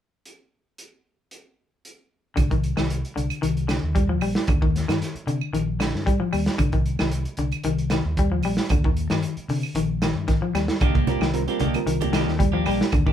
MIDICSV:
0, 0, Header, 1, 7, 480
1, 0, Start_track
1, 0, Key_signature, -3, "minor"
1, 0, Tempo, 528169
1, 231, Time_signature, 4, 2, 24, 8
1, 11930, End_track
2, 0, Start_track
2, 0, Title_t, "Reed electric piano"
2, 0, Program_c, 0, 4
2, 10065, Note_on_c, 0, 55, 75
2, 10068, Note_on_c, 0, 60, 68
2, 10078, Note_on_c, 0, 65, 71
2, 10082, Note_on_c, 0, 70, 88
2, 10210, Note_off_c, 0, 55, 0
2, 10212, Note_off_c, 0, 60, 0
2, 10217, Note_off_c, 0, 65, 0
2, 10219, Note_off_c, 0, 70, 0
2, 10302, Note_on_c, 0, 60, 80
2, 10304, Note_on_c, 0, 55, 87
2, 10309, Note_on_c, 0, 65, 72
2, 10312, Note_on_c, 0, 70, 89
2, 10379, Note_off_c, 0, 60, 0
2, 10380, Note_off_c, 0, 55, 0
2, 10382, Note_off_c, 0, 65, 0
2, 10384, Note_off_c, 0, 70, 0
2, 10428, Note_on_c, 0, 55, 79
2, 10430, Note_on_c, 0, 60, 72
2, 10439, Note_on_c, 0, 65, 70
2, 10447, Note_on_c, 0, 70, 82
2, 10563, Note_off_c, 0, 55, 0
2, 10564, Note_off_c, 0, 60, 0
2, 10569, Note_off_c, 0, 65, 0
2, 10573, Note_off_c, 0, 70, 0
2, 10674, Note_on_c, 0, 55, 70
2, 10679, Note_on_c, 0, 60, 62
2, 10686, Note_on_c, 0, 65, 64
2, 10688, Note_on_c, 0, 70, 81
2, 11215, Note_off_c, 0, 55, 0
2, 11217, Note_off_c, 0, 60, 0
2, 11221, Note_off_c, 0, 65, 0
2, 11222, Note_off_c, 0, 70, 0
2, 11930, End_track
3, 0, Start_track
3, 0, Title_t, "Clean electric guitar"
3, 0, Program_c, 1, 27
3, 9824, Note_on_c, 1, 51, 73
3, 9831, Note_on_c, 1, 58, 74
3, 9831, Note_on_c, 1, 62, 75
3, 9834, Note_on_c, 1, 67, 76
3, 9937, Note_off_c, 1, 67, 0
3, 9939, Note_off_c, 1, 62, 0
3, 9944, Note_off_c, 1, 58, 0
3, 9948, Note_on_c, 1, 67, 51
3, 9950, Note_on_c, 1, 62, 45
3, 9955, Note_on_c, 1, 58, 43
3, 9956, Note_off_c, 1, 51, 0
3, 10056, Note_off_c, 1, 58, 0
3, 10060, Note_off_c, 1, 62, 0
3, 10063, Note_off_c, 1, 67, 0
3, 10067, Note_on_c, 1, 58, 54
3, 10071, Note_on_c, 1, 62, 59
3, 10074, Note_on_c, 1, 67, 67
3, 10219, Note_off_c, 1, 58, 0
3, 10222, Note_off_c, 1, 62, 0
3, 10223, Note_off_c, 1, 67, 0
3, 10432, Note_on_c, 1, 67, 52
3, 10436, Note_on_c, 1, 62, 53
3, 10444, Note_on_c, 1, 58, 42
3, 10533, Note_off_c, 1, 58, 0
3, 10533, Note_off_c, 1, 62, 0
3, 10536, Note_off_c, 1, 67, 0
3, 10537, Note_on_c, 1, 51, 62
3, 10544, Note_on_c, 1, 58, 59
3, 10544, Note_on_c, 1, 62, 60
3, 10546, Note_on_c, 1, 67, 63
3, 10694, Note_off_c, 1, 51, 0
3, 10698, Note_off_c, 1, 58, 0
3, 10698, Note_off_c, 1, 62, 0
3, 10699, Note_off_c, 1, 67, 0
3, 10911, Note_on_c, 1, 67, 53
3, 10913, Note_on_c, 1, 62, 44
3, 10920, Note_on_c, 1, 58, 39
3, 11013, Note_off_c, 1, 58, 0
3, 11017, Note_off_c, 1, 62, 0
3, 11019, Note_off_c, 1, 67, 0
3, 11020, Note_on_c, 1, 51, 56
3, 11024, Note_on_c, 1, 58, 52
3, 11028, Note_on_c, 1, 62, 64
3, 11030, Note_on_c, 1, 67, 65
3, 11176, Note_off_c, 1, 51, 0
3, 11178, Note_off_c, 1, 58, 0
3, 11180, Note_off_c, 1, 62, 0
3, 11181, Note_off_c, 1, 67, 0
3, 11378, Note_on_c, 1, 67, 61
3, 11382, Note_on_c, 1, 62, 54
3, 11390, Note_on_c, 1, 58, 45
3, 11497, Note_off_c, 1, 58, 0
3, 11500, Note_off_c, 1, 62, 0
3, 11501, Note_off_c, 1, 67, 0
3, 11507, Note_on_c, 1, 58, 55
3, 11511, Note_on_c, 1, 62, 59
3, 11512, Note_on_c, 1, 67, 62
3, 11659, Note_off_c, 1, 58, 0
3, 11661, Note_off_c, 1, 62, 0
3, 11661, Note_off_c, 1, 67, 0
3, 11873, Note_on_c, 1, 67, 55
3, 11882, Note_on_c, 1, 62, 51
3, 11930, Note_off_c, 1, 62, 0
3, 11930, Note_off_c, 1, 67, 0
3, 11930, End_track
4, 0, Start_track
4, 0, Title_t, "Clean electric guitar"
4, 0, Program_c, 2, 27
4, 2143, Note_on_c, 2, 50, 73
4, 2260, Note_off_c, 2, 50, 0
4, 2282, Note_on_c, 2, 51, 61
4, 2494, Note_off_c, 2, 51, 0
4, 2516, Note_on_c, 2, 51, 59
4, 2730, Note_off_c, 2, 51, 0
4, 2871, Note_on_c, 2, 50, 64
4, 3084, Note_off_c, 2, 50, 0
4, 3108, Note_on_c, 2, 51, 74
4, 3322, Note_off_c, 2, 51, 0
4, 3347, Note_on_c, 2, 50, 66
4, 3562, Note_off_c, 2, 50, 0
4, 3588, Note_on_c, 2, 55, 68
4, 3703, Note_off_c, 2, 55, 0
4, 3720, Note_on_c, 2, 53, 60
4, 3820, Note_off_c, 2, 53, 0
4, 3834, Note_on_c, 2, 55, 63
4, 4046, Note_off_c, 2, 55, 0
4, 4081, Note_on_c, 2, 50, 73
4, 4190, Note_off_c, 2, 50, 0
4, 4198, Note_on_c, 2, 51, 62
4, 4411, Note_off_c, 2, 51, 0
4, 4438, Note_on_c, 2, 51, 61
4, 4651, Note_off_c, 2, 51, 0
4, 4792, Note_on_c, 2, 50, 65
4, 5004, Note_off_c, 2, 50, 0
4, 5029, Note_on_c, 2, 51, 82
4, 5243, Note_off_c, 2, 51, 0
4, 5270, Note_on_c, 2, 50, 65
4, 5483, Note_off_c, 2, 50, 0
4, 5509, Note_on_c, 2, 55, 73
4, 5623, Note_off_c, 2, 55, 0
4, 5633, Note_on_c, 2, 53, 59
4, 5736, Note_off_c, 2, 53, 0
4, 5749, Note_on_c, 2, 55, 69
4, 5962, Note_off_c, 2, 55, 0
4, 5983, Note_on_c, 2, 50, 81
4, 6099, Note_off_c, 2, 50, 0
4, 6116, Note_on_c, 2, 51, 63
4, 6329, Note_off_c, 2, 51, 0
4, 6362, Note_on_c, 2, 51, 61
4, 6573, Note_off_c, 2, 51, 0
4, 6713, Note_on_c, 2, 50, 66
4, 6925, Note_off_c, 2, 50, 0
4, 6949, Note_on_c, 2, 51, 82
4, 7162, Note_off_c, 2, 51, 0
4, 7195, Note_on_c, 2, 51, 70
4, 7406, Note_off_c, 2, 51, 0
4, 7442, Note_on_c, 2, 55, 71
4, 7550, Note_off_c, 2, 55, 0
4, 7558, Note_on_c, 2, 53, 59
4, 7658, Note_off_c, 2, 53, 0
4, 7679, Note_on_c, 2, 55, 65
4, 7888, Note_off_c, 2, 55, 0
4, 7919, Note_on_c, 2, 50, 81
4, 8028, Note_off_c, 2, 50, 0
4, 8045, Note_on_c, 2, 51, 64
4, 8254, Note_off_c, 2, 51, 0
4, 8278, Note_on_c, 2, 51, 63
4, 8490, Note_off_c, 2, 51, 0
4, 8632, Note_on_c, 2, 50, 65
4, 8844, Note_off_c, 2, 50, 0
4, 8867, Note_on_c, 2, 51, 78
4, 9081, Note_off_c, 2, 51, 0
4, 9114, Note_on_c, 2, 51, 69
4, 9325, Note_off_c, 2, 51, 0
4, 9341, Note_on_c, 2, 51, 69
4, 9459, Note_off_c, 2, 51, 0
4, 9470, Note_on_c, 2, 53, 59
4, 9574, Note_off_c, 2, 53, 0
4, 9586, Note_on_c, 2, 55, 65
4, 9801, Note_off_c, 2, 55, 0
4, 9832, Note_on_c, 2, 50, 74
4, 9944, Note_off_c, 2, 50, 0
4, 10193, Note_on_c, 2, 51, 63
4, 10408, Note_off_c, 2, 51, 0
4, 10547, Note_on_c, 2, 50, 69
4, 10761, Note_off_c, 2, 50, 0
4, 10784, Note_on_c, 2, 51, 78
4, 10999, Note_off_c, 2, 51, 0
4, 11023, Note_on_c, 2, 51, 70
4, 11239, Note_off_c, 2, 51, 0
4, 11260, Note_on_c, 2, 55, 73
4, 11378, Note_off_c, 2, 55, 0
4, 11391, Note_on_c, 2, 53, 63
4, 11494, Note_off_c, 2, 53, 0
4, 11508, Note_on_c, 2, 55, 66
4, 11721, Note_off_c, 2, 55, 0
4, 11751, Note_on_c, 2, 50, 79
4, 11863, Note_off_c, 2, 50, 0
4, 11873, Note_on_c, 2, 51, 69
4, 11930, Note_off_c, 2, 51, 0
4, 11930, End_track
5, 0, Start_track
5, 0, Title_t, "Fingered electric bass"
5, 0, Program_c, 3, 33
5, 2154, Note_on_c, 3, 36, 83
5, 2490, Note_off_c, 3, 36, 0
5, 2522, Note_on_c, 3, 36, 66
5, 2741, Note_off_c, 3, 36, 0
5, 2877, Note_on_c, 3, 36, 73
5, 2992, Note_off_c, 3, 36, 0
5, 3117, Note_on_c, 3, 36, 78
5, 3451, Note_off_c, 3, 36, 0
5, 3479, Note_on_c, 3, 39, 68
5, 3833, Note_off_c, 3, 39, 0
5, 3833, Note_on_c, 3, 34, 84
5, 3950, Note_off_c, 3, 34, 0
5, 4071, Note_on_c, 3, 39, 78
5, 4408, Note_off_c, 3, 39, 0
5, 4437, Note_on_c, 3, 43, 76
5, 4542, Note_off_c, 3, 43, 0
5, 4788, Note_on_c, 3, 48, 80
5, 4907, Note_off_c, 3, 48, 0
5, 5025, Note_on_c, 3, 34, 83
5, 5365, Note_off_c, 3, 34, 0
5, 5401, Note_on_c, 3, 43, 73
5, 5504, Note_off_c, 3, 43, 0
5, 5757, Note_on_c, 3, 39, 82
5, 5872, Note_off_c, 3, 39, 0
5, 5985, Note_on_c, 3, 36, 81
5, 6324, Note_off_c, 3, 36, 0
5, 6362, Note_on_c, 3, 36, 74
5, 6581, Note_off_c, 3, 36, 0
5, 6703, Note_on_c, 3, 36, 79
5, 6824, Note_off_c, 3, 36, 0
5, 6947, Note_on_c, 3, 36, 79
5, 7286, Note_off_c, 3, 36, 0
5, 7316, Note_on_c, 3, 39, 69
5, 7666, Note_off_c, 3, 39, 0
5, 7666, Note_on_c, 3, 34, 86
5, 7785, Note_off_c, 3, 34, 0
5, 7905, Note_on_c, 3, 39, 89
5, 8244, Note_off_c, 3, 39, 0
5, 8277, Note_on_c, 3, 43, 75
5, 8381, Note_off_c, 3, 43, 0
5, 8621, Note_on_c, 3, 48, 81
5, 8743, Note_off_c, 3, 48, 0
5, 8857, Note_on_c, 3, 34, 79
5, 9200, Note_off_c, 3, 34, 0
5, 9229, Note_on_c, 3, 43, 73
5, 9337, Note_off_c, 3, 43, 0
5, 9579, Note_on_c, 3, 39, 79
5, 9701, Note_off_c, 3, 39, 0
5, 9826, Note_on_c, 3, 36, 82
5, 10165, Note_off_c, 3, 36, 0
5, 10179, Note_on_c, 3, 36, 72
5, 10408, Note_off_c, 3, 36, 0
5, 10542, Note_on_c, 3, 36, 83
5, 10663, Note_off_c, 3, 36, 0
5, 10777, Note_on_c, 3, 36, 76
5, 11120, Note_off_c, 3, 36, 0
5, 11152, Note_on_c, 3, 39, 73
5, 11506, Note_on_c, 3, 34, 88
5, 11520, Note_off_c, 3, 39, 0
5, 11625, Note_off_c, 3, 34, 0
5, 11746, Note_on_c, 3, 39, 87
5, 11930, Note_off_c, 3, 39, 0
5, 11930, End_track
6, 0, Start_track
6, 0, Title_t, "Muted fingered electric bass strokes"
6, 4680, Note_on_c, 9, 29, 35
6, 4771, Note_off_c, 9, 29, 0
6, 5643, Note_on_c, 9, 29, 32
6, 5734, Note_off_c, 9, 29, 0
6, 5885, Note_on_c, 9, 29, 33
6, 5976, Note_off_c, 9, 29, 0
6, 8516, Note_on_c, 9, 29, 34
6, 8607, Note_off_c, 9, 29, 0
6, 9465, Note_on_c, 9, 29, 32
6, 9555, Note_off_c, 9, 29, 0
6, 9706, Note_on_c, 9, 29, 31
6, 9797, Note_off_c, 9, 29, 0
6, 11930, End_track
7, 0, Start_track
7, 0, Title_t, "Drums"
7, 232, Note_on_c, 9, 42, 41
7, 323, Note_off_c, 9, 42, 0
7, 712, Note_on_c, 9, 42, 40
7, 803, Note_off_c, 9, 42, 0
7, 1192, Note_on_c, 9, 42, 43
7, 1283, Note_off_c, 9, 42, 0
7, 1681, Note_on_c, 9, 42, 38
7, 1772, Note_off_c, 9, 42, 0
7, 2153, Note_on_c, 9, 42, 60
7, 2156, Note_on_c, 9, 36, 77
7, 2158, Note_on_c, 9, 75, 53
7, 2244, Note_off_c, 9, 42, 0
7, 2246, Note_off_c, 9, 36, 0
7, 2249, Note_off_c, 9, 75, 0
7, 2283, Note_on_c, 9, 36, 66
7, 2283, Note_on_c, 9, 42, 29
7, 2374, Note_off_c, 9, 36, 0
7, 2374, Note_off_c, 9, 42, 0
7, 2395, Note_on_c, 9, 42, 46
7, 2486, Note_off_c, 9, 42, 0
7, 2517, Note_on_c, 9, 38, 57
7, 2520, Note_on_c, 9, 75, 53
7, 2608, Note_off_c, 9, 38, 0
7, 2610, Note_off_c, 9, 75, 0
7, 2638, Note_on_c, 9, 42, 61
7, 2729, Note_off_c, 9, 42, 0
7, 2770, Note_on_c, 9, 42, 30
7, 2861, Note_off_c, 9, 42, 0
7, 2885, Note_on_c, 9, 42, 46
7, 2976, Note_off_c, 9, 42, 0
7, 3001, Note_on_c, 9, 75, 61
7, 3007, Note_on_c, 9, 42, 32
7, 3092, Note_off_c, 9, 75, 0
7, 3098, Note_off_c, 9, 42, 0
7, 3117, Note_on_c, 9, 42, 58
7, 3208, Note_off_c, 9, 42, 0
7, 3243, Note_on_c, 9, 42, 29
7, 3334, Note_off_c, 9, 42, 0
7, 3352, Note_on_c, 9, 38, 58
7, 3352, Note_on_c, 9, 42, 49
7, 3353, Note_on_c, 9, 75, 58
7, 3443, Note_off_c, 9, 38, 0
7, 3443, Note_off_c, 9, 42, 0
7, 3444, Note_off_c, 9, 75, 0
7, 3594, Note_on_c, 9, 36, 58
7, 3596, Note_on_c, 9, 42, 62
7, 3685, Note_off_c, 9, 36, 0
7, 3687, Note_off_c, 9, 42, 0
7, 3828, Note_on_c, 9, 75, 58
7, 3832, Note_on_c, 9, 46, 52
7, 3919, Note_off_c, 9, 75, 0
7, 3923, Note_off_c, 9, 46, 0
7, 3955, Note_on_c, 9, 38, 65
7, 4046, Note_off_c, 9, 38, 0
7, 4066, Note_on_c, 9, 42, 63
7, 4072, Note_on_c, 9, 36, 83
7, 4075, Note_on_c, 9, 75, 57
7, 4157, Note_off_c, 9, 42, 0
7, 4163, Note_off_c, 9, 36, 0
7, 4166, Note_off_c, 9, 75, 0
7, 4201, Note_on_c, 9, 36, 68
7, 4292, Note_off_c, 9, 36, 0
7, 4324, Note_on_c, 9, 38, 25
7, 4324, Note_on_c, 9, 42, 46
7, 4415, Note_off_c, 9, 38, 0
7, 4415, Note_off_c, 9, 42, 0
7, 4443, Note_on_c, 9, 75, 59
7, 4447, Note_on_c, 9, 38, 61
7, 4447, Note_on_c, 9, 42, 29
7, 4534, Note_off_c, 9, 75, 0
7, 4538, Note_off_c, 9, 38, 0
7, 4538, Note_off_c, 9, 42, 0
7, 4560, Note_on_c, 9, 38, 25
7, 4560, Note_on_c, 9, 42, 56
7, 4651, Note_off_c, 9, 38, 0
7, 4651, Note_off_c, 9, 42, 0
7, 4685, Note_on_c, 9, 42, 28
7, 4776, Note_off_c, 9, 42, 0
7, 4796, Note_on_c, 9, 42, 43
7, 4887, Note_off_c, 9, 42, 0
7, 4921, Note_on_c, 9, 75, 55
7, 5011, Note_off_c, 9, 75, 0
7, 5039, Note_on_c, 9, 42, 60
7, 5130, Note_off_c, 9, 42, 0
7, 5272, Note_on_c, 9, 75, 57
7, 5276, Note_on_c, 9, 38, 63
7, 5276, Note_on_c, 9, 42, 44
7, 5363, Note_off_c, 9, 75, 0
7, 5367, Note_off_c, 9, 38, 0
7, 5367, Note_off_c, 9, 42, 0
7, 5409, Note_on_c, 9, 38, 24
7, 5500, Note_off_c, 9, 38, 0
7, 5515, Note_on_c, 9, 36, 61
7, 5521, Note_on_c, 9, 42, 54
7, 5605, Note_off_c, 9, 36, 0
7, 5612, Note_off_c, 9, 42, 0
7, 5751, Note_on_c, 9, 75, 59
7, 5757, Note_on_c, 9, 46, 53
7, 5842, Note_off_c, 9, 75, 0
7, 5848, Note_off_c, 9, 46, 0
7, 5874, Note_on_c, 9, 38, 61
7, 5874, Note_on_c, 9, 42, 28
7, 5964, Note_off_c, 9, 38, 0
7, 5964, Note_off_c, 9, 42, 0
7, 5985, Note_on_c, 9, 42, 61
7, 5985, Note_on_c, 9, 75, 57
7, 5989, Note_on_c, 9, 36, 80
7, 6076, Note_off_c, 9, 42, 0
7, 6076, Note_off_c, 9, 75, 0
7, 6079, Note_off_c, 9, 36, 0
7, 6110, Note_on_c, 9, 42, 28
7, 6116, Note_on_c, 9, 36, 63
7, 6201, Note_off_c, 9, 42, 0
7, 6206, Note_off_c, 9, 36, 0
7, 6230, Note_on_c, 9, 42, 43
7, 6321, Note_off_c, 9, 42, 0
7, 6353, Note_on_c, 9, 38, 61
7, 6353, Note_on_c, 9, 75, 58
7, 6444, Note_off_c, 9, 38, 0
7, 6444, Note_off_c, 9, 75, 0
7, 6465, Note_on_c, 9, 42, 59
7, 6556, Note_off_c, 9, 42, 0
7, 6591, Note_on_c, 9, 42, 29
7, 6682, Note_off_c, 9, 42, 0
7, 6697, Note_on_c, 9, 42, 43
7, 6788, Note_off_c, 9, 42, 0
7, 6831, Note_on_c, 9, 42, 30
7, 6839, Note_on_c, 9, 75, 60
7, 6922, Note_off_c, 9, 42, 0
7, 6930, Note_off_c, 9, 75, 0
7, 6939, Note_on_c, 9, 42, 64
7, 7030, Note_off_c, 9, 42, 0
7, 7075, Note_on_c, 9, 42, 30
7, 7165, Note_off_c, 9, 42, 0
7, 7179, Note_on_c, 9, 38, 66
7, 7179, Note_on_c, 9, 42, 49
7, 7187, Note_on_c, 9, 75, 59
7, 7270, Note_off_c, 9, 38, 0
7, 7270, Note_off_c, 9, 42, 0
7, 7278, Note_off_c, 9, 75, 0
7, 7426, Note_on_c, 9, 42, 65
7, 7427, Note_on_c, 9, 36, 58
7, 7517, Note_off_c, 9, 42, 0
7, 7518, Note_off_c, 9, 36, 0
7, 7658, Note_on_c, 9, 46, 57
7, 7665, Note_on_c, 9, 75, 61
7, 7748, Note_off_c, 9, 46, 0
7, 7756, Note_off_c, 9, 75, 0
7, 7787, Note_on_c, 9, 38, 64
7, 7878, Note_off_c, 9, 38, 0
7, 7900, Note_on_c, 9, 42, 66
7, 7908, Note_on_c, 9, 36, 85
7, 7910, Note_on_c, 9, 75, 57
7, 7991, Note_off_c, 9, 42, 0
7, 7999, Note_off_c, 9, 36, 0
7, 8001, Note_off_c, 9, 75, 0
7, 8036, Note_on_c, 9, 36, 69
7, 8127, Note_off_c, 9, 36, 0
7, 8149, Note_on_c, 9, 42, 49
7, 8239, Note_off_c, 9, 42, 0
7, 8269, Note_on_c, 9, 38, 62
7, 8269, Note_on_c, 9, 42, 29
7, 8280, Note_on_c, 9, 75, 56
7, 8360, Note_off_c, 9, 38, 0
7, 8360, Note_off_c, 9, 42, 0
7, 8371, Note_off_c, 9, 75, 0
7, 8384, Note_on_c, 9, 42, 59
7, 8475, Note_off_c, 9, 42, 0
7, 8514, Note_on_c, 9, 42, 29
7, 8605, Note_off_c, 9, 42, 0
7, 8627, Note_on_c, 9, 46, 57
7, 8717, Note_off_c, 9, 46, 0
7, 8755, Note_on_c, 9, 75, 56
7, 8845, Note_off_c, 9, 75, 0
7, 8861, Note_on_c, 9, 42, 64
7, 8952, Note_off_c, 9, 42, 0
7, 9104, Note_on_c, 9, 38, 69
7, 9104, Note_on_c, 9, 42, 45
7, 9110, Note_on_c, 9, 75, 59
7, 9195, Note_off_c, 9, 38, 0
7, 9195, Note_off_c, 9, 42, 0
7, 9201, Note_off_c, 9, 75, 0
7, 9341, Note_on_c, 9, 38, 24
7, 9341, Note_on_c, 9, 42, 56
7, 9347, Note_on_c, 9, 36, 61
7, 9432, Note_off_c, 9, 38, 0
7, 9432, Note_off_c, 9, 42, 0
7, 9437, Note_off_c, 9, 36, 0
7, 9587, Note_on_c, 9, 38, 26
7, 9587, Note_on_c, 9, 42, 45
7, 9589, Note_on_c, 9, 75, 61
7, 9678, Note_off_c, 9, 38, 0
7, 9678, Note_off_c, 9, 42, 0
7, 9679, Note_off_c, 9, 75, 0
7, 9709, Note_on_c, 9, 38, 65
7, 9709, Note_on_c, 9, 42, 27
7, 9800, Note_off_c, 9, 38, 0
7, 9800, Note_off_c, 9, 42, 0
7, 9821, Note_on_c, 9, 42, 62
7, 9826, Note_on_c, 9, 36, 87
7, 9828, Note_on_c, 9, 75, 59
7, 9912, Note_off_c, 9, 42, 0
7, 9917, Note_off_c, 9, 36, 0
7, 9919, Note_off_c, 9, 75, 0
7, 9950, Note_on_c, 9, 42, 29
7, 9953, Note_on_c, 9, 63, 66
7, 9954, Note_on_c, 9, 36, 67
7, 10041, Note_off_c, 9, 42, 0
7, 10043, Note_off_c, 9, 63, 0
7, 10044, Note_off_c, 9, 36, 0
7, 10063, Note_on_c, 9, 63, 88
7, 10066, Note_on_c, 9, 42, 46
7, 10154, Note_off_c, 9, 63, 0
7, 10157, Note_off_c, 9, 42, 0
7, 10187, Note_on_c, 9, 75, 60
7, 10196, Note_on_c, 9, 38, 68
7, 10278, Note_off_c, 9, 75, 0
7, 10287, Note_off_c, 9, 38, 0
7, 10303, Note_on_c, 9, 42, 59
7, 10393, Note_off_c, 9, 42, 0
7, 10430, Note_on_c, 9, 42, 30
7, 10521, Note_off_c, 9, 42, 0
7, 10538, Note_on_c, 9, 42, 44
7, 10551, Note_on_c, 9, 63, 74
7, 10629, Note_off_c, 9, 42, 0
7, 10642, Note_off_c, 9, 63, 0
7, 10670, Note_on_c, 9, 42, 31
7, 10674, Note_on_c, 9, 75, 62
7, 10761, Note_off_c, 9, 42, 0
7, 10765, Note_off_c, 9, 75, 0
7, 10788, Note_on_c, 9, 42, 61
7, 10879, Note_off_c, 9, 42, 0
7, 10913, Note_on_c, 9, 42, 28
7, 10921, Note_on_c, 9, 63, 86
7, 11004, Note_off_c, 9, 42, 0
7, 11011, Note_off_c, 9, 63, 0
7, 11025, Note_on_c, 9, 38, 67
7, 11025, Note_on_c, 9, 42, 49
7, 11034, Note_on_c, 9, 75, 59
7, 11116, Note_off_c, 9, 38, 0
7, 11116, Note_off_c, 9, 42, 0
7, 11125, Note_off_c, 9, 75, 0
7, 11160, Note_on_c, 9, 38, 25
7, 11251, Note_off_c, 9, 38, 0
7, 11268, Note_on_c, 9, 63, 71
7, 11269, Note_on_c, 9, 36, 59
7, 11272, Note_on_c, 9, 42, 64
7, 11359, Note_off_c, 9, 63, 0
7, 11360, Note_off_c, 9, 36, 0
7, 11363, Note_off_c, 9, 42, 0
7, 11504, Note_on_c, 9, 75, 59
7, 11507, Note_on_c, 9, 46, 52
7, 11595, Note_off_c, 9, 75, 0
7, 11598, Note_off_c, 9, 46, 0
7, 11642, Note_on_c, 9, 38, 68
7, 11733, Note_off_c, 9, 38, 0
7, 11744, Note_on_c, 9, 42, 65
7, 11744, Note_on_c, 9, 75, 61
7, 11749, Note_on_c, 9, 36, 81
7, 11835, Note_off_c, 9, 42, 0
7, 11835, Note_off_c, 9, 75, 0
7, 11839, Note_off_c, 9, 36, 0
7, 11875, Note_on_c, 9, 36, 67
7, 11930, Note_off_c, 9, 36, 0
7, 11930, End_track
0, 0, End_of_file